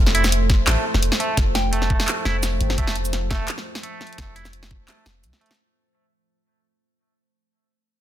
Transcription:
0.00 0.66 F1 loud
0.00 5.55 F3 medium
0.00 5.55 A3 medium
0.00 5.55 C5 medium
0.07 snare soft
0.15 0.25 E4 medium
0.15 closed hi-hat soft
0.24 snare medium
0.24 shaker soft
0.32 closed hi-hat medium
0.50 kick loud
0.50 snare soft
0.67 0.76 A1 loud
0.67 0.84 A3 medium
0.67 clap loud
0.67 snare medium
0.67 closed hi-hat medium
0.94 1.10 F1 loud
0.94 snare medium
1.03 closed hi-hat medium
1.12 snare medium
1.20 1.37 A3 loud
1.20 closed hi-hat soft
1.37 2.07 F1 loud
1.37 kick loud
1.37 snare medium
1.37 closed hi-hat medium
1.55 1.76 G5 medium
1.55 snare medium
1.55 closed hi-hat soft
1.73 2.24 A3 loud
1.73 closed hi-hat medium
1.82 snare soft
1.90 kick loud
2.00 snare medium
2.08 clap loud
2.08 closed hi-hat medium
2.25 2.59 F1 medium
2.25 2.36 E4 medium
2.25 snare medium
2.43 snare medium
2.43 closed hi-hat medium
2.43 shaker medium
2.60 2.77 G1 medium
2.60 closed hi-hat soft
2.70 snare medium
2.78 3.47 F1 loud
2.78 2.95 A3 medium
2.78 kick loud
2.78 closed hi-hat medium
2.87 snare medium
2.96 closed hi-hat soft
3.05 shaker soft
3.13 snare medium
3.13 closed hi-hat medium
3.31 3.47 A3 loud
3.31 kick loud
3.31 snare medium
3.48 clap loud
3.48 closed hi-hat medium
3.58 snare medium
3.75 snare medium
3.83 4.34 A3 loud
3.83 closed hi-hat medium
4.01 snare medium
4.01 closed hi-hat soft
4.07 closed hi-hat soft
4.13 closed hi-hat soft
4.18 4.87 F1 loud
4.18 kick loud
4.18 snare medium
4.18 closed hi-hat medium
4.36 4.46 E4 medium
4.36 closed hi-hat soft
4.45 snare medium
4.45 shaker soft
4.53 closed hi-hat medium
4.63 snare medium
4.71 kick loud
4.88 5.05 A3 medium
4.88 clap loud
4.88 snare medium
4.88 closed hi-hat medium
5.06 5.25 F1 loud
5.06 snare medium
5.06 shaker soft
5.24 5.32 C2 loud
5.24 closed hi-hat medium
5.24 shaker medium
5.33 snare medium
5.41 5.52 A3 loud
5.41 closed hi-hat soft
5.46 closed hi-hat soft
5.51 snare medium
5.51 closed hi-hat soft
5.55 closed hi-hat soft

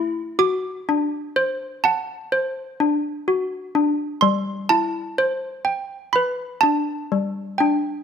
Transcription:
0.00 0.39 A3 medium
0.00 0.39 E4 medium
0.00 0.39 C5 medium
0.00 0.42 C6 medium
0.39 2.32 F#4 medium
0.39 1.31 D6 medium
0.89 2.79 D4 medium
1.36 2.31 C5 medium
1.84 3.75 F#5 medium
1.84 2.75 A5 medium
2.32 4.22 C5 medium
2.80 3.74 D4 medium
3.28 4.22 F#4 medium
3.75 4.22 D4 medium
4.21 6.15 G3 medium
4.21 4.71 C6 medium
4.69 6.15 E4 medium
4.69 5.69 A5 medium
5.18 6.15 C5 medium
5.65 6.16 G5 medium
6.13 8.03 B4 medium
6.13 6.59 B5 medium
6.61 7.59 D4 medium
6.61 7.56 A5 medium
7.12 8.03 G3 medium
7.58 8.03 D4 medium
7.58 7.81 G5 medium

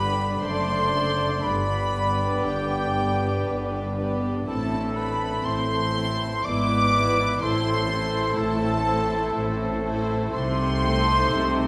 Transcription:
0.00 0.30 G1 medium
0.00 0.30 G2 medium
0.00 0.42 D3 medium
0.00 4.43 D3 medium
0.00 0.38 B3 medium
0.00 0.42 D4 medium
0.00 5.40 D4 medium
0.00 0.38 G4 medium
0.00 0.42 G4 medium
0.00 0.42 B4 medium
0.00 0.43 B4 loud
0.00 4.43 D5 medium
0.00 0.43 B5 loud
0.42 1.33 F#1 medium
0.42 1.33 F#2 medium
0.42 1.45 A3 medium
0.42 0.94 A3 medium
0.42 0.94 D4 medium
0.42 0.93 A4 medium
0.42 1.45 A4 medium
0.42 1.44 C5 loud
0.42 0.93 D5 medium
0.42 1.46 C6 loud
0.42 1.45 C6 loud
0.95 1.44 A3 medium
0.95 1.44 D4 medium
0.95 1.44 A4 medium
0.95 1.44 D5 medium
1.44 2.32 G1 loud
1.44 2.32 G2 medium
1.44 4.44 B3 medium
1.44 4.43 G4 medium
1.44 2.46 B4 loud
1.44 2.44 B5 loud
1.44 2.43 B5 loud
1.94 2.94 B3 medium
1.94 2.94 D4 medium
1.94 2.93 G4 medium
1.94 2.93 B4 medium
2.44 3.34 G1 loud
2.44 3.34 G2 medium
2.44 3.98 G4 medium
2.44 3.94 G5 loud
2.44 3.95 G5 loud
2.94 3.95 B3 medium
2.94 3.95 D4 medium
2.94 3.95 G4 medium
2.94 3.95 B4 medium
3.46 4.36 G1 medium
3.46 4.36 G2 medium
3.96 4.47 B3 medium
3.96 4.47 D4 medium
3.96 4.46 G4 medium
3.96 4.46 B4 medium
4.47 5.33 A1 loud
4.47 5.33 A2 loud
4.47 10.29 E3 medium
4.47 6.41 A3 medium
4.47 4.96 C4 medium
4.47 4.94 E4 medium
4.47 10.17 E4 medium
4.47 4.95 A4 medium
4.47 4.99 A4 medium
4.47 6.15 A4 medium
4.47 4.93 A5 loud
4.47 4.97 A5 medium
4.96 5.94 C4 medium
4.96 5.92 E4 medium
4.96 5.93 A4 medium
4.96 5.45 B4 medium
4.96 5.47 B5 medium
4.96 5.44 B5 loud
5.45 6.34 A1 medium
5.45 6.33 A2 medium
5.45 6.45 C4 medium
5.45 6.46 C5 loud
5.45 6.45 C6 loud
5.45 6.46 C6 loud
5.93 6.45 C4 medium
5.93 6.43 E4 medium
5.93 6.44 A4 medium
6.44 7.31 G#1 medium
6.44 7.31 G#2 medium
6.44 7.26 G#3 medium
6.44 7.40 B3 medium
6.44 6.93 B3 medium
6.44 6.92 E4 medium
6.44 6.93 E4 medium
6.44 6.93 B4 medium
6.44 7.45 B4 medium
6.44 7.42 D5 loud
6.44 7.42 D6 loud
6.94 7.42 B3 medium
6.94 7.41 E4 medium
6.94 7.42 E4 medium
6.94 7.41 B4 medium
7.42 8.27 A1 loud
7.42 8.26 A2 medium
7.42 7.89 A3 medium
7.42 11.67 A3 medium
7.42 11.67 C4 medium
7.42 7.89 E4 medium
7.42 7.89 A4 medium
7.42 11.67 A4 medium
7.42 8.39 C5 loud
7.42 7.89 C5 medium
7.42 8.36 C6 loud
7.42 8.39 C6 loud
7.90 8.84 A3 medium
7.90 8.84 E4 medium
7.90 8.84 A4 medium
7.90 8.84 C5 medium
8.37 9.23 A1 loud
8.37 9.23 A2 medium
8.37 9.84 A4 loud
8.37 9.84 A5 loud
8.86 9.82 A3 medium
8.86 9.82 E4 medium
8.86 9.83 A4 medium
8.86 9.82 C5 medium
9.35 10.22 A1 loud
9.35 10.22 A2 medium
9.84 10.32 A3 medium
9.84 10.32 E4 medium
9.84 10.32 A4 medium
9.84 10.33 C5 medium
10.33 11.21 C2 loud
10.33 11.20 C3 loud
10.33 11.67 C3 loud
10.33 11.67 D#4 loud
10.33 11.67 C5 loud
10.33 11.67 C6 loud
10.83 11.67 A3 medium
10.83 11.67 D#4 medium
10.83 11.67 A4 medium
10.83 11.67 C5 medium
11.32 11.67 C2 loud
11.32 11.67 C3 loud

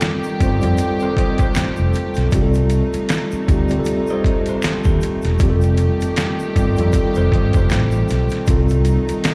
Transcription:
0.00 2.30 D#3 medium
0.00 0.31 G3 medium
0.00 9.34 A3 medium
0.00 0.32 C4 medium
0.00 0.32 F4 medium
0.00 2.30 G4 medium
0.00 0.33 A4 medium
0.00 finger snap medium
0.00 snare loud
0.00 closed hi-hat medium
0.00 shaker medium
0.23 shaker soft
0.39 0.58 G1 medium
0.39 0.60 G3 medium
0.39 0.60 C4 medium
0.39 0.61 F4 medium
0.39 0.61 C5 medium
0.39 kick medium
0.39 closed hi-hat medium
0.39 shaker soft
0.61 0.76 F2 medium
0.61 2.00 G3 medium
0.61 2.00 C4 medium
0.61 2.01 F4 medium
0.61 2.02 A4 medium
0.61 closed hi-hat medium
0.61 shaker soft
0.77 closed hi-hat medium
0.77 shaker medium
1.00 1.17 A4 medium
1.00 1.17 C5 medium
1.00 shaker soft
1.17 1.39 C5 medium
1.17 1.38 D#5 medium
1.17 kick medium
1.17 closed hi-hat medium
1.38 2.29 A4 medium
1.38 2.29 C5 medium
1.38 kick medium
1.38 closed hi-hat soft
1.38 shaker soft
1.55 finger snap medium
1.55 muted fretless electric bass stroke medium
1.55 snare loud
1.55 closed hi-hat medium
1.55 shaker medium
1.76 1.92 F1 medium
1.76 shaker soft
1.93 closed hi-hat medium
1.93 shaker soft
2.14 2.30 B1 medium
2.14 snare soft
2.14 closed hi-hat soft
2.14 shaker soft
2.31 2.81 C2 loud
2.31 5.37 C3 medium
2.31 3.39 G3 medium
2.31 3.39 C4 medium
2.31 5.37 D#4 medium
2.31 3.40 F4 medium
2.31 kick loud
2.31 closed hi-hat medium
2.31 shaker medium
2.36 2.41 G4 medium
2.42 3.44 A4 medium
2.54 closed hi-hat soft
2.54 shaker medium
2.70 closed hi-hat medium
2.70 shaker soft
2.93 muted fretless electric bass stroke soft
2.93 closed hi-hat soft
2.93 shaker soft
3.09 finger snap medium
3.09 snare loud
3.09 closed hi-hat medium
3.09 shaker medium
3.31 muted fretless electric bass stroke soft
3.31 shaker soft
3.47 3.79 D2 medium
3.47 3.67 G3 medium
3.47 3.68 C4 medium
3.47 3.69 F4 medium
3.47 3.69 G4 medium
3.47 kick medium
3.47 closed hi-hat medium
3.47 shaker soft
3.69 5.08 G3 medium
3.69 5.08 C4 medium
3.69 5.09 F4 medium
3.69 closed hi-hat soft
3.69 shaker soft
3.73 3.77 G4 medium
3.79 5.13 A4 loud
3.85 closed hi-hat medium
3.85 shaker medium
4.07 4.46 D#5 medium
4.07 shaker soft
4.11 4.46 C5 medium
4.24 kick medium
4.24 closed hi-hat medium
4.46 4.63 A4 medium
4.46 4.63 C5 medium
4.46 closed hi-hat soft
4.46 shaker soft
4.62 4.85 F4 medium
4.62 4.84 A4 medium
4.62 finger snap medium
4.62 muted fretless electric bass stroke medium
4.62 snare loud
4.62 closed hi-hat medium
4.62 shaker medium
4.84 4.99 D#2 medium
4.84 5.38 D#4 medium
4.84 5.38 G4 medium
4.84 kick medium
4.84 shaker medium
5.01 closed hi-hat medium
5.01 shaker soft
5.22 5.37 E1 medium
5.22 snare soft
5.22 closed hi-hat soft
5.22 shaker soft
5.39 5.88 F1 medium
5.39 8.44 D#3 medium
5.39 6.46 G3 medium
5.39 6.47 C4 medium
5.39 6.48 F4 medium
5.39 8.44 G4 medium
5.39 kick loud
5.39 closed hi-hat medium
5.39 shaker medium
5.43 5.49 G4 medium
5.50 6.51 A4 loud
5.61 closed hi-hat soft
5.61 shaker soft
5.77 closed hi-hat medium
5.77 shaker soft
6.01 muted fretless electric bass stroke soft
6.01 closed hi-hat soft
6.01 shaker medium
6.16 finger snap medium
6.16 snare loud
6.16 closed hi-hat medium
6.16 shaker medium
6.39 shaker soft
6.55 6.74 G1 medium
6.55 6.75 G3 medium
6.55 6.76 C4 medium
6.55 6.76 F4 medium
6.55 6.77 A4 medium
6.55 kick medium
6.55 closed hi-hat soft
6.55 shaker soft
6.76 6.92 F2 medium
6.76 8.15 G3 medium
6.76 8.16 C4 medium
6.76 8.17 F4 medium
6.76 closed hi-hat soft
6.76 shaker soft
6.80 8.17 A4 medium
6.93 kick medium
6.93 closed hi-hat medium
6.93 shaker medium
7.14 7.30 F1 medium
7.14 7.32 A4 medium
7.14 7.32 C5 medium
7.14 closed hi-hat soft
7.14 shaker soft
7.32 7.50 G1 medium
7.32 7.54 C5 medium
7.32 7.54 D#5 medium
7.32 kick medium
7.32 closed hi-hat soft
7.53 7.68 F1 medium
7.53 8.45 A4 medium
7.53 8.45 C5 medium
7.53 kick medium
7.53 closed hi-hat soft
7.53 shaker soft
7.70 8.02 A1 loud
7.70 finger snap medium
7.70 snare loud
7.70 closed hi-hat medium
7.70 shaker medium
7.91 shaker soft
8.08 8.28 B1 medium
8.08 snare soft
8.08 closed hi-hat medium
8.08 shaker soft
8.29 snare soft
8.29 closed hi-hat soft
8.29 shaker soft
8.46 8.96 C2 medium
8.46 9.34 D#3 medium
8.46 9.34 G3 medium
8.46 9.34 C4 medium
8.46 9.34 D#4 medium
8.46 9.34 F4 medium
8.46 kick loud
8.46 closed hi-hat medium
8.46 shaker medium
8.51 9.34 A4 medium
8.69 closed hi-hat soft
8.69 shaker medium
8.85 closed hi-hat medium
8.85 shaker soft
9.08 muted fretless electric bass stroke soft
9.08 closed hi-hat soft
9.08 shaker soft
9.24 finger snap medium
9.24 snare loud
9.24 closed hi-hat medium
9.24 shaker medium

